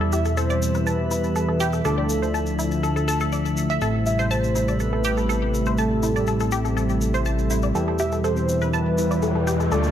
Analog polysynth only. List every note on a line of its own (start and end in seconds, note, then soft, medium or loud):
0.00 1.82 E3 medium
0.00 1.82 G3 medium
0.00 1.82 E4 medium
0.00 1.82 G4 medium
0.00 1.82 E5 medium
1.85 3.79 D3 medium
1.85 3.79 A3 medium
1.85 3.79 D4 medium
1.85 3.79 F4 medium
1.85 3.79 A4 medium
1.85 3.79 D5 medium
3.81 7.72 A3 medium
3.81 7.72 C4 medium
3.81 7.72 E4 medium
3.81 7.72 G4 medium
3.81 7.72 A4 medium
3.81 7.72 E5 medium
7.75 9.69 E3 medium
7.75 9.69 G3 medium
7.75 9.69 E4 medium
7.75 9.69 G4 medium
7.75 9.69 E5 medium
9.72 9.91 D3 medium
9.72 9.91 A3 medium
9.72 9.91 D4 medium
9.72 9.91 F4 medium
9.72 9.91 A4 medium
9.72 9.91 D5 medium